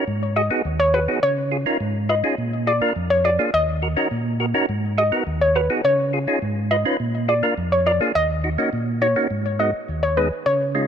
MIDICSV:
0, 0, Header, 1, 3, 480
1, 0, Start_track
1, 0, Tempo, 576923
1, 62, Time_signature, 4, 2, 24, 8
1, 9046, End_track
2, 0, Start_track
2, 0, Title_t, "Synth pluck"
2, 0, Program_c, 0, 84
2, 303, Note_on_c, 0, 75, 77
2, 386, Note_off_c, 0, 75, 0
2, 662, Note_on_c, 0, 73, 87
2, 746, Note_off_c, 0, 73, 0
2, 782, Note_on_c, 0, 71, 80
2, 866, Note_off_c, 0, 71, 0
2, 1022, Note_on_c, 0, 73, 103
2, 1361, Note_off_c, 0, 73, 0
2, 1742, Note_on_c, 0, 75, 80
2, 1826, Note_off_c, 0, 75, 0
2, 2224, Note_on_c, 0, 74, 80
2, 2307, Note_off_c, 0, 74, 0
2, 2582, Note_on_c, 0, 73, 89
2, 2666, Note_off_c, 0, 73, 0
2, 2703, Note_on_c, 0, 74, 87
2, 2786, Note_off_c, 0, 74, 0
2, 2944, Note_on_c, 0, 75, 110
2, 3281, Note_off_c, 0, 75, 0
2, 4144, Note_on_c, 0, 75, 84
2, 4227, Note_off_c, 0, 75, 0
2, 4505, Note_on_c, 0, 73, 82
2, 4588, Note_off_c, 0, 73, 0
2, 4625, Note_on_c, 0, 71, 80
2, 4708, Note_off_c, 0, 71, 0
2, 4864, Note_on_c, 0, 73, 96
2, 5202, Note_off_c, 0, 73, 0
2, 5582, Note_on_c, 0, 75, 83
2, 5666, Note_off_c, 0, 75, 0
2, 6063, Note_on_c, 0, 74, 76
2, 6146, Note_off_c, 0, 74, 0
2, 6424, Note_on_c, 0, 73, 81
2, 6507, Note_off_c, 0, 73, 0
2, 6544, Note_on_c, 0, 74, 82
2, 6627, Note_off_c, 0, 74, 0
2, 6783, Note_on_c, 0, 75, 105
2, 7121, Note_off_c, 0, 75, 0
2, 7503, Note_on_c, 0, 73, 81
2, 7586, Note_off_c, 0, 73, 0
2, 7984, Note_on_c, 0, 75, 77
2, 8067, Note_off_c, 0, 75, 0
2, 8344, Note_on_c, 0, 73, 86
2, 8427, Note_off_c, 0, 73, 0
2, 8463, Note_on_c, 0, 71, 75
2, 8546, Note_off_c, 0, 71, 0
2, 8703, Note_on_c, 0, 73, 98
2, 9041, Note_off_c, 0, 73, 0
2, 9046, End_track
3, 0, Start_track
3, 0, Title_t, "Tonewheel organ"
3, 0, Program_c, 1, 16
3, 63, Note_on_c, 1, 44, 91
3, 300, Note_on_c, 1, 66, 73
3, 303, Note_on_c, 1, 68, 80
3, 349, Note_off_c, 1, 66, 0
3, 351, Note_off_c, 1, 68, 0
3, 420, Note_off_c, 1, 44, 0
3, 420, Note_on_c, 1, 59, 73
3, 421, Note_on_c, 1, 63, 64
3, 422, Note_on_c, 1, 66, 67
3, 423, Note_on_c, 1, 68, 76
3, 517, Note_off_c, 1, 59, 0
3, 518, Note_off_c, 1, 63, 0
3, 518, Note_off_c, 1, 66, 0
3, 519, Note_off_c, 1, 68, 0
3, 542, Note_on_c, 1, 39, 80
3, 781, Note_on_c, 1, 66, 76
3, 784, Note_on_c, 1, 68, 85
3, 830, Note_off_c, 1, 66, 0
3, 831, Note_off_c, 1, 68, 0
3, 899, Note_off_c, 1, 39, 0
3, 901, Note_on_c, 1, 59, 68
3, 902, Note_on_c, 1, 63, 63
3, 902, Note_on_c, 1, 66, 64
3, 903, Note_on_c, 1, 68, 74
3, 997, Note_off_c, 1, 59, 0
3, 998, Note_off_c, 1, 63, 0
3, 998, Note_off_c, 1, 66, 0
3, 999, Note_off_c, 1, 68, 0
3, 1021, Note_on_c, 1, 49, 72
3, 1261, Note_on_c, 1, 65, 78
3, 1264, Note_on_c, 1, 68, 85
3, 1309, Note_off_c, 1, 65, 0
3, 1311, Note_off_c, 1, 68, 0
3, 1379, Note_off_c, 1, 49, 0
3, 1380, Note_on_c, 1, 61, 68
3, 1381, Note_on_c, 1, 63, 63
3, 1382, Note_on_c, 1, 65, 62
3, 1383, Note_on_c, 1, 70, 77
3, 1477, Note_off_c, 1, 61, 0
3, 1478, Note_off_c, 1, 63, 0
3, 1478, Note_off_c, 1, 65, 0
3, 1479, Note_off_c, 1, 70, 0
3, 1501, Note_on_c, 1, 44, 94
3, 1740, Note_on_c, 1, 65, 79
3, 1744, Note_on_c, 1, 71, 89
3, 1789, Note_off_c, 1, 65, 0
3, 1791, Note_off_c, 1, 71, 0
3, 1859, Note_off_c, 1, 44, 0
3, 1861, Note_on_c, 1, 61, 69
3, 1863, Note_on_c, 1, 63, 62
3, 1864, Note_on_c, 1, 65, 63
3, 1864, Note_on_c, 1, 68, 73
3, 1958, Note_off_c, 1, 61, 0
3, 1958, Note_off_c, 1, 63, 0
3, 1959, Note_off_c, 1, 65, 0
3, 1959, Note_off_c, 1, 68, 0
3, 1982, Note_on_c, 1, 46, 87
3, 2220, Note_on_c, 1, 65, 75
3, 2223, Note_on_c, 1, 68, 83
3, 2269, Note_off_c, 1, 65, 0
3, 2271, Note_off_c, 1, 68, 0
3, 2339, Note_off_c, 1, 46, 0
3, 2341, Note_on_c, 1, 58, 68
3, 2342, Note_on_c, 1, 62, 64
3, 2343, Note_on_c, 1, 65, 65
3, 2344, Note_on_c, 1, 70, 76
3, 2438, Note_off_c, 1, 58, 0
3, 2438, Note_off_c, 1, 62, 0
3, 2439, Note_off_c, 1, 65, 0
3, 2439, Note_off_c, 1, 70, 0
3, 2462, Note_on_c, 1, 41, 76
3, 2699, Note_on_c, 1, 65, 76
3, 2703, Note_on_c, 1, 68, 86
3, 2749, Note_off_c, 1, 65, 0
3, 2751, Note_off_c, 1, 68, 0
3, 2819, Note_off_c, 1, 41, 0
3, 2820, Note_on_c, 1, 58, 70
3, 2821, Note_on_c, 1, 62, 65
3, 2823, Note_on_c, 1, 65, 62
3, 2823, Note_on_c, 1, 68, 79
3, 2917, Note_off_c, 1, 58, 0
3, 2918, Note_off_c, 1, 62, 0
3, 2918, Note_off_c, 1, 65, 0
3, 2919, Note_off_c, 1, 68, 0
3, 2943, Note_on_c, 1, 39, 73
3, 3181, Note_on_c, 1, 66, 81
3, 3184, Note_on_c, 1, 70, 84
3, 3230, Note_off_c, 1, 66, 0
3, 3231, Note_off_c, 1, 70, 0
3, 3299, Note_on_c, 1, 61, 70
3, 3300, Note_off_c, 1, 39, 0
3, 3300, Note_on_c, 1, 63, 64
3, 3302, Note_on_c, 1, 66, 65
3, 3303, Note_on_c, 1, 70, 76
3, 3397, Note_off_c, 1, 61, 0
3, 3397, Note_off_c, 1, 63, 0
3, 3398, Note_off_c, 1, 66, 0
3, 3399, Note_off_c, 1, 70, 0
3, 3421, Note_on_c, 1, 46, 89
3, 3660, Note_on_c, 1, 66, 93
3, 3663, Note_on_c, 1, 70, 102
3, 3709, Note_off_c, 1, 66, 0
3, 3711, Note_off_c, 1, 70, 0
3, 3779, Note_off_c, 1, 46, 0
3, 3780, Note_on_c, 1, 61, 85
3, 3780, Note_on_c, 1, 63, 76
3, 3781, Note_on_c, 1, 66, 73
3, 3783, Note_on_c, 1, 70, 92
3, 3877, Note_off_c, 1, 61, 0
3, 3877, Note_off_c, 1, 63, 0
3, 3878, Note_off_c, 1, 66, 0
3, 3879, Note_off_c, 1, 70, 0
3, 3902, Note_on_c, 1, 44, 93
3, 4140, Note_on_c, 1, 66, 76
3, 4143, Note_on_c, 1, 68, 82
3, 4189, Note_off_c, 1, 66, 0
3, 4191, Note_off_c, 1, 68, 0
3, 4259, Note_off_c, 1, 44, 0
3, 4260, Note_on_c, 1, 59, 72
3, 4261, Note_on_c, 1, 63, 69
3, 4261, Note_on_c, 1, 66, 67
3, 4263, Note_on_c, 1, 70, 77
3, 4357, Note_off_c, 1, 59, 0
3, 4357, Note_off_c, 1, 63, 0
3, 4358, Note_off_c, 1, 66, 0
3, 4358, Note_off_c, 1, 70, 0
3, 4383, Note_on_c, 1, 39, 81
3, 4621, Note_on_c, 1, 66, 78
3, 4624, Note_on_c, 1, 70, 87
3, 4670, Note_off_c, 1, 66, 0
3, 4671, Note_off_c, 1, 70, 0
3, 4740, Note_off_c, 1, 39, 0
3, 4741, Note_on_c, 1, 59, 68
3, 4742, Note_on_c, 1, 63, 64
3, 4743, Note_on_c, 1, 66, 64
3, 4744, Note_on_c, 1, 68, 76
3, 4838, Note_off_c, 1, 59, 0
3, 4838, Note_off_c, 1, 63, 0
3, 4838, Note_off_c, 1, 66, 0
3, 4839, Note_off_c, 1, 68, 0
3, 4862, Note_on_c, 1, 49, 76
3, 5101, Note_on_c, 1, 65, 78
3, 5104, Note_on_c, 1, 68, 86
3, 5150, Note_off_c, 1, 65, 0
3, 5151, Note_off_c, 1, 68, 0
3, 5219, Note_off_c, 1, 49, 0
3, 5221, Note_on_c, 1, 61, 69
3, 5222, Note_on_c, 1, 63, 65
3, 5223, Note_on_c, 1, 65, 63
3, 5225, Note_on_c, 1, 68, 74
3, 5318, Note_off_c, 1, 61, 0
3, 5318, Note_off_c, 1, 63, 0
3, 5319, Note_off_c, 1, 65, 0
3, 5319, Note_off_c, 1, 68, 0
3, 5343, Note_on_c, 1, 44, 90
3, 5582, Note_on_c, 1, 65, 77
3, 5585, Note_on_c, 1, 71, 89
3, 5630, Note_off_c, 1, 65, 0
3, 5631, Note_off_c, 1, 71, 0
3, 5700, Note_off_c, 1, 44, 0
3, 5702, Note_on_c, 1, 61, 66
3, 5703, Note_on_c, 1, 63, 62
3, 5704, Note_on_c, 1, 65, 62
3, 5706, Note_on_c, 1, 71, 76
3, 5798, Note_off_c, 1, 61, 0
3, 5799, Note_off_c, 1, 63, 0
3, 5799, Note_off_c, 1, 65, 0
3, 5800, Note_off_c, 1, 71, 0
3, 5824, Note_on_c, 1, 46, 94
3, 6060, Note_on_c, 1, 65, 74
3, 6063, Note_on_c, 1, 68, 81
3, 6109, Note_off_c, 1, 65, 0
3, 6111, Note_off_c, 1, 68, 0
3, 6180, Note_off_c, 1, 46, 0
3, 6180, Note_on_c, 1, 58, 70
3, 6181, Note_on_c, 1, 62, 65
3, 6183, Note_on_c, 1, 65, 65
3, 6184, Note_on_c, 1, 70, 79
3, 6277, Note_off_c, 1, 58, 0
3, 6278, Note_off_c, 1, 62, 0
3, 6279, Note_off_c, 1, 65, 0
3, 6279, Note_off_c, 1, 70, 0
3, 6303, Note_on_c, 1, 41, 77
3, 6541, Note_on_c, 1, 65, 78
3, 6545, Note_on_c, 1, 70, 82
3, 6590, Note_off_c, 1, 65, 0
3, 6592, Note_off_c, 1, 70, 0
3, 6660, Note_off_c, 1, 41, 0
3, 6661, Note_on_c, 1, 58, 66
3, 6662, Note_on_c, 1, 62, 61
3, 6663, Note_on_c, 1, 65, 65
3, 6664, Note_on_c, 1, 68, 78
3, 6758, Note_off_c, 1, 58, 0
3, 6758, Note_off_c, 1, 62, 0
3, 6759, Note_off_c, 1, 65, 0
3, 6759, Note_off_c, 1, 68, 0
3, 6782, Note_on_c, 1, 39, 76
3, 7021, Note_on_c, 1, 63, 73
3, 7024, Note_on_c, 1, 66, 85
3, 7070, Note_off_c, 1, 63, 0
3, 7071, Note_off_c, 1, 66, 0
3, 7139, Note_off_c, 1, 39, 0
3, 7142, Note_on_c, 1, 58, 71
3, 7142, Note_on_c, 1, 61, 60
3, 7143, Note_on_c, 1, 63, 65
3, 7144, Note_on_c, 1, 66, 76
3, 7238, Note_off_c, 1, 58, 0
3, 7238, Note_off_c, 1, 61, 0
3, 7239, Note_off_c, 1, 63, 0
3, 7239, Note_off_c, 1, 66, 0
3, 7262, Note_on_c, 1, 46, 90
3, 7501, Note_on_c, 1, 63, 76
3, 7504, Note_on_c, 1, 66, 85
3, 7550, Note_off_c, 1, 63, 0
3, 7551, Note_off_c, 1, 66, 0
3, 7619, Note_off_c, 1, 46, 0
3, 7622, Note_on_c, 1, 58, 68
3, 7623, Note_on_c, 1, 61, 64
3, 7623, Note_on_c, 1, 63, 64
3, 7624, Note_on_c, 1, 66, 73
3, 7718, Note_off_c, 1, 58, 0
3, 7718, Note_off_c, 1, 61, 0
3, 7719, Note_off_c, 1, 63, 0
3, 7719, Note_off_c, 1, 66, 0
3, 7743, Note_on_c, 1, 44, 90
3, 7981, Note_on_c, 1, 56, 70
3, 7982, Note_on_c, 1, 59, 66
3, 7983, Note_on_c, 1, 63, 61
3, 7985, Note_on_c, 1, 66, 74
3, 8078, Note_off_c, 1, 56, 0
3, 8078, Note_off_c, 1, 59, 0
3, 8079, Note_off_c, 1, 63, 0
3, 8080, Note_off_c, 1, 66, 0
3, 8100, Note_off_c, 1, 44, 0
3, 8224, Note_on_c, 1, 39, 73
3, 8462, Note_on_c, 1, 56, 73
3, 8463, Note_on_c, 1, 59, 68
3, 8464, Note_on_c, 1, 63, 68
3, 8465, Note_on_c, 1, 68, 78
3, 8558, Note_off_c, 1, 56, 0
3, 8559, Note_off_c, 1, 59, 0
3, 8559, Note_off_c, 1, 63, 0
3, 8560, Note_off_c, 1, 68, 0
3, 8581, Note_off_c, 1, 39, 0
3, 8703, Note_on_c, 1, 49, 72
3, 8942, Note_on_c, 1, 56, 74
3, 8943, Note_on_c, 1, 61, 70
3, 8944, Note_on_c, 1, 63, 67
3, 8945, Note_on_c, 1, 65, 80
3, 9038, Note_off_c, 1, 56, 0
3, 9039, Note_off_c, 1, 61, 0
3, 9039, Note_off_c, 1, 63, 0
3, 9040, Note_off_c, 1, 65, 0
3, 9046, Note_off_c, 1, 49, 0
3, 9046, End_track
0, 0, End_of_file